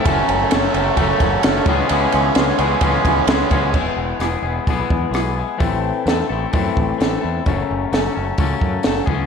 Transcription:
<<
  \new Staff \with { instrumentName = "Clean electric guitar" } { \time 4/4 \key fis \dorian \tempo 4 = 130 <fis, cis fis a cis' a'>4 <fis, cis fis a cis' a'>8 <fis, cis fis a cis' a'>8 <fis, cis fis a cis' a'>4 <fis, cis fis a cis' a'>8 <cis e b cis' gis'>8 | <cis e b cis' gis'>4 <cis e b cis' gis'>8 <cis e b cis' gis'>8 <cis e b cis' gis'>4 <cis e b cis' gis'>8 <cis e b cis' gis'>8 | <e gis b e' gis'>4 <gis b e' gis'>8 <b e' gis'>8 <e gis b e' gis'>4 <gis b e' gis'>8 <b e' gis'>8 | <a, e a c' e' a'>4 <a c' e' a'>8 <a c' e' a'>8 <a, e a c' e' a'>4 <a c' e' a'>8 <a c' e' a'>8 |
<fis, cis fis a cis' a'>4 <fis a cis' a'>8 <fis a cis' a'>8 <fis, cis fis a cis' a'>4 <fis a cis' a'>8 <cis e b cis' gis'>8 | }
  \new Staff \with { instrumentName = "Overdriven electric guitar" } { \clef bass \time 4/4 \key fis \dorian <fis a cis'>4 <fis a cis'>8 <fis a cis'>8 <fis a cis'>4 <fis a cis'>8 <e gis cis'>8 | <e gis cis'>4 <e gis cis'>8 <e gis cis'>8 <e gis cis'>4 <e gis cis'>8 <e gis cis'>8 | r1 | r1 |
r1 | }
  \new Staff \with { instrumentName = "Picked electric bass" } { \clef bass \time 4/4 \key fis \dorian fis,,8 fis,,8 fis,,8 fis,,8 fis,,8 fis,,8 fis,,8 cis,8 | cis,8 cis,8 cis,8 cis,8 cis,8 cis,8 cis,8 cis,8 | e,,8 e,,8 e,,8 e,,8 b,,8 e,8 b,,4 | a,,4 e,8 a,,8 fis,8 a,,8 a,,8 e,8 |
fis,,8 fis,,8 fis,,8 fis,,8 cis,8 fis,8 fis,,8 cis,8 | }
  \new DrumStaff \with { instrumentName = "Drums" } \drummode { \time 4/4 <bd cymr>8 cymr8 <cymr sn>8 cymr8 <bd cymr>8 <bd cymr>8 <cymr sn>8 <bd cymr>8 | cymr8 cymr8 <cymr sn>8 cymr8 <bd cymr>8 <bd cymr>8 <cymr sn>8 <bd cymr>8 | <cymc bd>4 <hho ss>4 <hho bd>8 bd8 <hho ss>4 | <hho bd>4 <hho sn>4 <hho bd>8 bd8 <hho sn>4 |
<hho bd>4 <hho sn>4 <hho bd>8 bd8 <hho sn>8 bd8 | }
>>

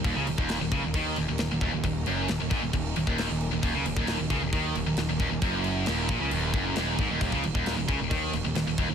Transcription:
<<
  \new Staff \with { instrumentName = "String section" } { \time 4/4 \key ees \minor \tempo 4 = 134 <ges bes ees' bes'>1~ | <ges bes ees' bes'>1~ | <ges bes ees' bes'>1~ | <ges bes ees' bes'>1~ |
<ges bes ees' bes'>1 | }
  \new Staff \with { instrumentName = "Distorted electric guitar" } { \clef bass \time 4/4 \key ees \minor ees,16 des16 ees,16 ees,8 ees,16 des16 ees,16 ees8 ees,16 ees,16 ees,16 ees,16 ees,16 ees,16 | ees,8 ges,8 ees,16 ees,16 aes,16 ees,16 ees,8 ees,16 ees,8 ees,8 ees,16 | ees,16 des16 ees,16 ees,8 ees,16 des16 ees,16 ees8 ees,16 ees,16 ees,16 ees,16 ees,16 ees,16 | ges,4 ees,8 bes,16 des16 ees,8 ges,8 ees,8 aes,16 ees,16 |
ees,16 des16 ees,16 ees,8 ees,16 des16 ees,16 ees8 ees,16 ees,16 ees,16 ees,16 ees,16 ees,16 | }
  \new Staff \with { instrumentName = "Distorted electric guitar" } { \clef bass \time 4/4 \key ees \minor ees,16 des16 ees,16 ees,8 ees,16 des16 ees,16 ees8 ees,16 ees,16 ees,16 ees,16 ees,16 ees,16 | ees,8 ges,8 ees,16 ees,16 aes,16 ees,16 ees,8 ees,16 ees,8 ees,8 ees,16 | ees,16 des16 ees,16 ees,8 ees,16 des16 ees,16 ees8 ees,16 ees,16 ees,16 ees,16 ees,16 ees,16 | ges,4 ees,8 bes,16 des16 ees,8 ges,8 ees,8 aes,16 ees,16 |
ees,16 des16 ees,16 ees,8 ees,16 des16 ees,16 ees8 ees,16 ees,16 ees,16 ees,16 ees,16 ees,16 | }
  \new Staff \with { instrumentName = "Picked electric bass" } { \clef bass \time 4/4 \key ees \minor ees,,16 des,16 ees,,16 ees,,8 ees,,16 des,16 ees,,16 ees,8 ees,,16 ees,,16 ees,,16 ees,,16 ees,,16 ees,,16 | ees,,8 ges,,8 ees,,16 ees,,16 aes,,16 ees,,16 ees,,8 ees,,16 ees,,8 ees,,8 ees,,16 | ees,,16 des,16 ees,,16 ees,,8 ees,,16 des,16 ees,,16 ees,8 ees,,16 ees,,16 ees,,16 ees,,16 ees,,16 ees,,16 | ges,,4 ees,,8 bes,,16 des,16 ees,,8 ges,,8 ees,,8 aes,,16 ees,,16 |
ees,,16 des,16 ees,,16 ees,,8 ees,,16 des,16 ees,,16 ees,8 ees,,16 ees,,16 ees,,16 ees,,16 ees,,16 ees,,16 | }
  \new DrumStaff \with { instrumentName = "Drums" } \drummode { \time 4/4 <cymc bd>8 cymc16 bd16 <cymc sn>8 <cymc bd>8 <cymc bd>8 cymc8 <cymc sn>8 <cymc bd>8 | <cymc bd>8 cymc8 <cymc sn>8 <cymc bd>8 <cymc bd>8 cymc16 bd16 <cymc sn>8 cymc8 | <cymc bd>8 cymc16 bd16 <cymc sn>8 <cymc bd>8 <cymc bd>8 cymc8 <cymc sn>8 <cymc bd>8 | <cymc bd>8 cymc8 <cymc sn>8 <cymc bd>8 cymc8 <cymc bd>8 <cymc sn>8 <cymc bd>8 |
<cymc bd>16 bd16 cymc16 bd16 <cymc sn>8 <cymc bd>8 <cymc bd>8 cymc8 <cymc sn>8 <cymc bd>8 | }
>>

